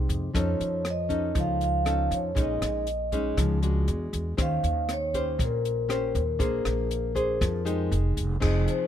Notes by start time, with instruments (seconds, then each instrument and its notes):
Already playing: nylon-string guitar C3 G#3 D#4 G4
0.09 upright bass F2, kick, closed hi-hat
0.34 upright bass F2, nylon-string guitar F3 C#4 D#4 A4, vibraphone C#5, kick, cross-stick, closed hi-hat
0.60 upright bass F2, closed hi-hat
0.85 cross-stick, closed hi-hat
0.90 vibraphone D#5
1.09 nylon-string guitar C#4 D#4 A4, kick, closed hi-hat
1.35 upright bass C#2, nylon-string guitar F3, kick, closed hi-hat
1.40 vibraphone F5
1.61 vibraphone F5, closed hi-hat
1.85 nylon-string guitar C#4 D#4 A4, cross-stick, closed hi-hat
2.11 upright bass F2, vibraphone C#5, kick, closed hi-hat
2.35 upright bass A#1, nylon-string guitar A#2 G#3 C#4 D#4, kick, closed hi-hat
2.41 vibraphone D#5
2.62 upright bass A#1, vibraphone D#5, cross-stick, closed hi-hat
2.87 closed hi-hat
3.12 nylon-string guitar G#3 C#4 D#4, kick, closed hi-hat
3.37 upright bass C#2, nylon-string guitar F3, kick, cross-stick, closed hi-hat
3.62 nylon-string guitar G#3 D4 F#4, closed hi-hat
3.88 upright bass E2, closed hi-hat
4.13 upright bass E2, kick, closed hi-hat
4.37 upright bass D#2, nylon-string guitar D#3 C#4 G4 C5, kick, cross-stick, closed hi-hat
4.42 vibraphone F5
4.63 upright bass D#2, closed hi-hat
4.89 cross-stick, closed hi-hat
4.93 vibraphone C#5
5.14 nylon-string guitar C#4 G4 C5, vibraphone C5, kick, closed hi-hat
5.38 upright bass A#1, nylon-string guitar A#2, kick, closed hi-hat
5.44 vibraphone A#4
5.65 closed hi-hat
5.89 nylon-string guitar C#4 G4 C5, cross-stick, closed hi-hat
6.15 upright bass D#2, kick, closed hi-hat
6.39 upright bass A#1, nylon-string guitar A#3 D4 G#4 C5, kick, closed hi-hat
6.65 upright bass A#1, cross-stick, closed hi-hat
6.91 closed hi-hat
7.15 nylon-string guitar D4 G#4 C5, kick, closed hi-hat
7.41 upright bass F2, nylon-string guitar F3, kick, cross-stick, closed hi-hat
7.65 nylon-string guitar G#3 D#4 G4, closed hi-hat
7.92 upright bass F1, closed hi-hat
8.17 upright bass F1, kick, closed hi-hat
8.40 upright bass F1, nylon-string guitar F3 C4 D#4 G#4, kick, cross-stick, crash
8.46 vibraphone D#5
8.68 vibraphone C5, closed hi-hat